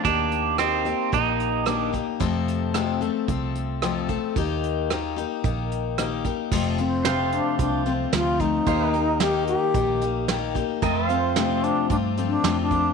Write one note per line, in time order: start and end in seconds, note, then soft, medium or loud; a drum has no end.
0.04 0.92 D#2 medium
0.04 0.58 D#3 medium
0.04 0.59 A#3 medium
0.04 0.59 D4 medium
0.04 0.59 G4 medium
0.04 kick loud
0.04 closed hi-hat medium
0.32 closed hi-hat medium
0.58 0.86 D#3 medium
0.58 0.86 A#3 medium
0.58 1.14 C4 medium
0.58 0.85 D#4 medium
0.58 0.84 G4 medium
0.58 cross-stick medium
0.58 closed hi-hat medium
0.85 1.12 A#3 soft
0.85 1.12 D#4 soft
0.85 1.12 G4 soft
0.85 closed hi-hat medium
1.12 2.00 A#1 medium
1.12 1.64 D#3 soft
1.12 1.65 A#3 medium
1.12 1.66 D#4 medium
1.12 1.66 G4 medium
1.12 kick medium
1.12 closed hi-hat medium
1.40 closed hi-hat medium
1.66 1.93 D#3 medium
1.66 1.93 A#3 medium
1.66 1.90 D4 medium
1.66 1.93 D#4 medium
1.66 1.91 G4 medium
1.66 cross-stick medium
1.66 closed hi-hat medium
1.93 2.20 A#3 soft
1.93 2.21 D#4 soft
1.93 2.20 G4 soft
1.93 kick medium
1.93 closed hi-hat medium
2.20 2.73 F2 medium
2.20 3.08 F2 medium
2.20 2.73 C3 medium
2.20 2.73 F3 medium
2.20 2.74 A3 medium
2.20 2.74 C4 medium
2.20 2.74 A4 loud
2.20 kick medium
2.20 closed hi-hat medium
2.48 closed hi-hat medium
2.74 3.01 F2 medium
2.74 3.01 C3 medium
2.74 3.01 F3 medium
2.74 3.01 A3 medium
2.74 3.00 C4 medium
2.74 3.00 A4 medium
2.74 cross-stick loud
2.74 closed hi-hat medium
3.01 3.27 F3 soft
3.01 3.28 A3 soft
3.01 3.28 C4 soft
3.01 3.28 A4 medium
3.01 closed hi-hat medium
3.28 4.16 C2 medium
3.28 3.82 F3 medium
3.28 3.82 A3 medium
3.28 3.82 C4 medium
3.28 3.82 A4 medium
3.28 kick loud
3.28 closed hi-hat medium
3.55 closed hi-hat soft
3.82 4.09 F2 medium
3.82 4.09 C3 medium
3.82 4.09 F3 medium
3.82 4.09 A3 medium
3.82 4.08 C4 medium
3.82 4.07 A4 medium
3.82 cross-stick loud
3.82 closed hi-hat medium
4.08 4.36 F3 soft
4.08 4.36 A3 soft
4.08 4.36 C4 soft
4.08 4.36 A4 medium
4.08 kick medium
4.08 closed hi-hat soft
4.36 5.24 D#2 medium
4.36 4.89 D#3 medium
4.36 4.89 A#3 medium
4.36 4.90 D#4 medium
4.36 4.90 G4 medium
4.36 kick loud
4.36 closed hi-hat medium
4.63 closed hi-hat soft
4.90 5.17 D#3 medium
4.90 5.17 A#3 medium
4.90 5.16 D#4 medium
4.90 5.15 G4 medium
4.90 cross-stick medium
4.90 closed hi-hat medium
5.16 5.43 A#3 soft
5.16 5.44 D#4 soft
5.16 5.44 G4 medium
5.16 closed hi-hat medium
5.44 6.31 A#1 medium
5.44 5.97 D#3 medium
5.44 5.97 A#3 medium
5.44 5.98 D#4 medium
5.44 5.98 G4 medium
5.44 kick loud
5.44 closed hi-hat medium
5.71 closed hi-hat medium
5.98 6.25 D#3 medium
5.98 6.25 A#3 medium
5.98 6.24 D#4 medium
5.98 6.23 G4 medium
5.98 cross-stick loud
5.98 closed hi-hat medium
6.24 6.52 A#3 soft
6.24 6.52 D#4 soft
6.24 6.51 G4 soft
6.24 kick medium
6.24 closed hi-hat medium
6.51 7.39 F1 medium
6.51 6.79 F2 medium
6.51 6.79 C3 medium
6.51 6.79 F3 medium
6.51 6.79 A3 medium
6.51 6.78 C4 medium
6.51 6.77 F4 medium
6.51 kick loud
6.51 crash medium
6.78 7.05 F3 soft
6.78 7.05 A3 soft
6.78 7.35 C4 medium
6.78 7.05 C4 soft
6.78 7.05 F4 medium
6.78 closed hi-hat medium
7.05 7.59 F2 medium
7.05 7.59 C3 medium
7.05 7.58 F3 medium
7.05 7.58 A3 medium
7.05 7.59 C4 medium
7.05 7.60 F4 medium
7.05 8.65 C5 medium
7.05 8.66 F5 medium
7.05 snare loud
7.05 closed hi-hat medium
7.32 7.59 D4 medium
7.32 closed hi-hat medium
7.59 8.05 C2 medium
7.59 7.86 F3 medium
7.59 7.86 A3 medium
7.59 7.85 C4 medium
7.59 7.84 D4 medium
7.59 7.85 F4 medium
7.59 kick loud
7.59 closed hi-hat medium
7.86 8.12 F3 soft
7.86 8.12 A3 soft
7.86 7.92 C4 medium
7.86 8.12 C4 soft
7.86 8.13 F4 soft
7.86 closed hi-hat medium
8.13 8.59 D2 medium
8.13 8.40 F2 medium
8.13 8.40 C3 medium
8.13 8.40 F3 medium
8.13 8.40 A3 medium
8.13 8.39 C4 medium
8.13 8.42 F4 medium
8.13 8.38 F4 medium
8.13 snare loud
8.13 closed hi-hat medium
8.39 8.66 F3 soft
8.39 8.67 A3 soft
8.39 8.67 C4 soft
8.39 9.23 D#4 medium
8.39 8.67 F4 soft
8.39 kick medium
8.39 closed hi-hat medium
8.66 9.54 D#2 medium
8.66 8.94 D#3 medium
8.66 8.94 A#3 medium
8.66 8.94 D#4 medium
8.66 8.92 G4 medium
8.66 8.92 C5 medium
8.66 8.93 F5 medium
8.66 kick loud
8.66 closed hi-hat medium
8.92 9.20 A#3 soft
8.92 9.20 D#4 soft
8.92 9.21 G4 medium
8.92 10.80 A#4 medium
8.92 10.81 D#5 medium
8.92 closed hi-hat medium
9.20 9.73 D#3 medium
9.20 9.74 A#3 medium
9.20 9.74 D#4 medium
9.20 9.47 G4 loud
9.20 9.75 G4 medium
9.20 snare loud
9.20 closed hi-hat medium
9.47 10.25 G4 loud
9.47 closed hi-hat medium
9.74 10.62 A#1 medium
9.74 10.01 D#3 medium
9.74 10.02 A#3 medium
9.74 10.01 D#4 medium
9.74 10.01 G4 medium
9.74 kick loud
9.74 closed hi-hat medium
10.01 10.28 A#3 soft
10.01 10.28 D#4 soft
10.01 10.29 G4 medium
10.01 closed hi-hat medium
10.28 10.55 D#3 medium
10.28 10.56 A#3 medium
10.28 10.55 D#4 medium
10.28 10.53 G4 medium
10.28 snare loud
10.28 closed hi-hat medium
10.55 10.82 A#3 soft
10.55 10.83 D#4 soft
10.55 10.82 G4 medium
10.55 kick medium
10.55 closed hi-hat medium
10.82 11.09 F2 medium
10.82 11.70 F2 medium
10.82 11.09 C3 medium
10.82 11.09 F3 medium
10.82 11.09 A3 medium
10.82 11.09 C4 loud
10.82 11.08 F4 medium
10.82 11.08 A#4 medium
10.82 11.09 D#5 medium
10.82 kick loud
10.82 closed hi-hat medium
11.08 11.35 F3 soft
11.08 11.35 A3 soft
11.08 11.65 C4 medium
11.08 11.36 C4 soft
11.08 11.36 F4 medium
11.08 12.93 C5 medium
11.08 12.93 F5 medium
11.08 closed hi-hat medium
11.36 11.90 F2 medium
11.36 11.90 C3 medium
11.36 11.88 F3 medium
11.36 11.89 A3 medium
11.36 11.90 C4 medium
11.36 11.90 F4 medium
11.36 snare loud
11.36 closed hi-hat medium
11.63 11.90 D4 medium
11.63 closed hi-hat medium
11.90 12.36 G2 medium
11.90 12.17 F3 medium
11.90 12.17 A3 medium
11.90 12.17 C4 medium
11.90 11.96 D4 medium
11.90 12.16 F4 medium
11.90 kick loud
11.90 closed hi-hat medium
12.17 12.43 F3 soft
12.17 12.44 A3 soft
12.17 12.43 C4 soft
12.17 12.44 F4 medium
12.17 closed hi-hat medium
12.27 12.60 D4 medium
12.44 12.89 F2 medium
12.44 12.71 F2 medium
12.44 12.71 C3 medium
12.44 12.71 F3 medium
12.44 12.71 A3 medium
12.44 12.70 C4 medium
12.44 12.69 F4 medium
12.44 snare loud
12.44 closed hi-hat medium
12.62 12.93 D4 medium
12.70 12.93 F3 soft
12.70 12.93 A3 soft
12.70 12.93 C4 soft
12.70 12.93 F4 soft
12.70 kick medium
12.70 closed hi-hat medium